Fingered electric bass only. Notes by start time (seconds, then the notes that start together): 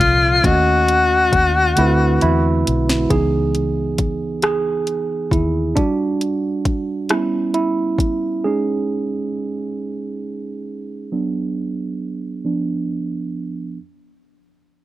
0.00 C2
0.45 D#2
1.34 D#2
1.79 D2
2.23 E2
2.68 B1
3.11 C#2
5.32 D#2